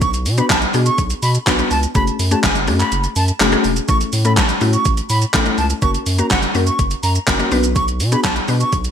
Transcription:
Already playing: sub bass B1, synth pluck B3 D4 F#4 B4
0.02 flute C#6, kick, closed hi-hat, shaker
0.14 closed hi-hat, shaker
0.26 sub bass B2, open hi-hat, shaker
0.38 synth pluck B3 D4 F#4 B4, flute B5, closed hi-hat, shaker
0.50 sub bass B1, flute A5, kick, snare, clap, closed hi-hat, shaker
0.62 closed hi-hat, shaker
0.74 sub bass B2, synth pluck B3 D4 F#4 G#4, open hi-hat, shaker
0.86 flute C#6, closed hi-hat, shaker
0.98 sub bass B1, kick, closed hi-hat, shaker
1.10 closed hi-hat, shaker
1.23 sub bass B2, flute B5, open hi-hat, shaker
1.35 closed hi-hat, shaker
1.46 sub bass B1, synth pluck B3 D4 F#4 B4, kick, snare, clap, closed hi-hat, shaker
1.59 synth pluck B3 D4 F#4 B4, closed hi-hat, shaker
1.71 sub bass C#2, flute A5, open hi-hat, shaker
1.83 closed hi-hat, shaker
1.95 sub bass F#1, synth pluck A3 C#4 F#4 G#4, flute B5, kick, closed hi-hat, shaker
2.07 closed hi-hat, shaker
2.19 sub bass F#2, open hi-hat, shaker
2.31 synth pluck A3 C#4 F#4 G#4, flute A5, closed hi-hat, shaker
2.43 sub bass F#1, flute G#5, kick, snare, clap, closed hi-hat, shaker
2.55 closed hi-hat, shaker
2.68 sub bass F#2, synth pluck A3 C#4 F#4 G#4, open hi-hat, shaker
2.80 flute B5, clap, closed hi-hat, shaker
2.92 sub bass F#1, closed hi-hat, shaker
3.04 closed hi-hat, shaker
3.16 sub bass F#2, flute A5, open hi-hat, shaker
3.28 closed hi-hat, shaker
3.40 sub bass F#1, synth pluck A3 C#4 F#4 G#4, snare, clap, closed hi-hat, shaker
3.52 synth pluck A3 C#4 F#4 G#4, closed hi-hat, shaker
3.64 sub bass E1, open hi-hat, shaker
3.76 closed hi-hat, shaker
3.89 sub bass A1, synth pluck A3 C#4 E4 A4, flute C#6, kick, closed hi-hat, shaker
4.01 closed hi-hat, shaker
4.13 sub bass A2, open hi-hat, shaker
4.25 synth pluck A3 C#4 E4 A4, flute B5, closed hi-hat, shaker
4.37 sub bass A1, flute A5, kick, snare, clap, closed hi-hat, shaker
4.49 closed hi-hat, shaker
4.61 sub bass A2, synth pluck A3 C#4 E4 F#4, open hi-hat, shaker
4.73 flute C#6, closed hi-hat, shaker
4.85 sub bass A1, kick, closed hi-hat, shaker
4.97 closed hi-hat, shaker
5.10 sub bass A2, flute B5, open hi-hat, shaker
5.22 closed hi-hat, shaker
5.34 sub bass A1, synth pluck A3 C#4 E4 A4, kick, snare, clap, closed hi-hat, shaker
5.46 synth pluck A3 C#4 E4 A4, closed hi-hat, shaker
5.58 sub bass C#2, flute A5, open hi-hat, shaker
5.70 closed hi-hat, shaker
5.82 sub bass F#1, synth pluck A#3 C#4 F#4 A#4, flute C#6, kick, closed hi-hat, shaker
5.94 closed hi-hat, shaker
6.06 sub bass F#2, open hi-hat, shaker
6.18 synth pluck A#3 C#4 F#4 A#4, flute A#5, closed hi-hat, shaker
6.30 sub bass F#1, flute F#5, kick, snare, clap, closed hi-hat, shaker
6.43 closed hi-hat, shaker
6.55 sub bass F#2, synth pluck A#3 C#4 F#4 A#4, open hi-hat, shaker
6.67 flute C#6, closed hi-hat, shaker
6.79 sub bass F#1, kick, closed hi-hat, shaker
6.91 closed hi-hat, shaker
7.03 sub bass F#2, flute A#5, open hi-hat, shaker
7.15 closed hi-hat, shaker
7.27 sub bass F#1, synth pluck A#3 C#4 F#4 A#4, kick, snare, clap, closed hi-hat, shaker
7.39 synth pluck A#3 C#4 F#4 A#4, closed hi-hat, shaker
7.51 sub bass B1, synth pluck B3 D4 F#4 B4, open hi-hat, shaker
7.64 closed hi-hat, shaker
7.76 flute C#6, kick, closed hi-hat, shaker
7.88 closed hi-hat, shaker
8.00 sub bass B2, open hi-hat, shaker
8.12 synth pluck B3 D4 F#4 G#4, flute B5, closed hi-hat, shaker
8.24 sub bass B1, flute A5, kick, snare, clap, closed hi-hat, shaker
8.36 closed hi-hat, shaker
8.48 sub bass B2, synth pluck B3 D4 F#4 B4, open hi-hat, shaker
8.60 flute C#6, closed hi-hat, shaker
8.73 sub bass B1, kick, closed hi-hat, shaker
8.84 closed hi-hat, shaker

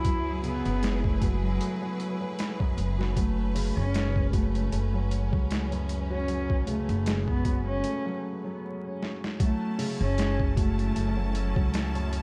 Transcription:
Already playing: upright bass C#2, felt piano F#2 F#3 A3 F#4, string section F#3 E4 G#4 B4, cello E4
0.05 felt piano F#3, kick, closed hi-hat
0.43 felt piano C#3, cello B3, closed hi-hat
0.65 upright bass F#1, closed hi-hat
0.82 felt piano G#3, snare, closed hi-hat
1.04 cello A3, kick
1.21 felt piano F#4, kick, closed hi-hat
1.44 cello F#3
1.60 felt piano A3, closed hi-hat
1.82 felt piano F#3
2.00 closed hi-hat
2.21 felt piano F#3
2.39 snare, closed hi-hat
2.59 felt piano F#2, kick
2.77 upright bass F#1, closed hi-hat
2.99 felt piano F#4, snare
3.16 felt piano F#3, cello A3, string section C#4, kick, closed hi-hat
3.55 felt piano C#3, open hi-hat
3.77 upright bass F#1, cello C#4
3.94 felt piano G#3, snare, closed hi-hat
4.16 kick
4.33 cello A3, felt piano F#4, kick, closed hi-hat
4.55 closed hi-hat
4.72 upright bass F#1, felt piano A3, closed hi-hat
4.93 felt piano F#3
5.11 closed hi-hat
5.32 upright bass C#2, felt piano F#3, kick
5.51 snare, closed hi-hat
5.71 felt piano F#2, closed hi-hat
5.89 closed hi-hat
6.10 cello C#4, felt piano F#4
6.28 felt piano F#3, closed hi-hat
6.50 kick
6.67 felt piano C#3, cello A3, closed hi-hat
6.89 upright bass F#1, closed hi-hat
7.06 felt piano G#3, snare, closed hi-hat
7.28 cello B3, kick
7.45 felt piano F#4, kick, closed hi-hat
7.68 cello C#4
7.84 felt piano A3, closed hi-hat
8.06 felt piano F#3
8.44 felt piano F#3
9.02 snare
9.24 snare
9.39 string section F#3 C#4 E4 A5, felt piano F#3, cello A3, kick, closed hi-hat
9.79 felt piano C#3, open hi-hat
10.01 upright bass F#1, cello C#4
10.18 felt piano G#3, snare, closed hi-hat
10.40 kick
10.56 cello A3, felt piano F#4, kick, closed hi-hat
10.79 closed hi-hat
10.95 upright bass F#1, felt piano A3, closed hi-hat
11.17 felt piano F#3
11.35 closed hi-hat
11.56 upright bass C#2, felt piano F#3, kick
11.74 snare, closed hi-hat
11.95 felt piano F#2, closed hi-hat
12.13 closed hi-hat

